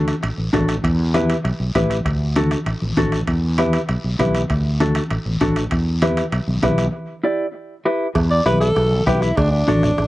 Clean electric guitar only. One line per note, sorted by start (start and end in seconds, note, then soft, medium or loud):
0.00 0.14 D4 medium
0.00 0.14 F#4 medium
0.00 0.14 A4 medium
0.53 0.75 D4 medium
0.53 0.75 F#4 medium
0.53 0.75 A4 medium
1.14 1.36 E4 medium
1.14 1.36 G4 medium
1.14 1.36 B4 medium
1.75 1.97 E4 medium
1.75 1.97 G4 medium
1.75 1.97 B4 loud
2.36 2.58 D4 medium
2.36 2.58 F#4 medium
2.36 2.58 A4 medium
2.97 3.19 D4 medium
2.97 3.19 F#4 medium
2.97 3.19 A4 medium
3.58 3.80 E4 medium
3.58 3.80 G4 medium
3.58 3.80 B4 medium
4.20 4.41 E4 medium
4.20 4.41 G4 medium
4.20 4.41 B4 medium
4.80 5.02 D4 medium
4.80 5.02 F#4 medium
4.80 5.02 A4 medium
5.41 5.63 D4 medium
5.41 5.63 F#4 medium
5.41 5.63 A4 medium
6.02 6.24 E4 medium
6.02 6.24 G4 medium
6.02 6.24 B4 medium
6.63 6.85 E4 medium
6.63 6.85 G4 medium
6.63 6.85 B4 medium
7.24 7.45 E4 medium
7.24 7.45 G4 medium
7.24 7.46 D5 medium
7.85 8.07 E4 medium
7.85 8.07 G4 medium
7.85 8.07 B4 medium
8.46 8.67 E4 medium
8.46 8.68 G4 medium
8.46 8.68 B4 medium
9.07 9.28 E4 medium
9.07 9.29 G4 medium
9.07 9.29 B4 medium
9.68 9.89 D4 medium
9.68 9.89 F#4 medium
9.68 9.89 A4 medium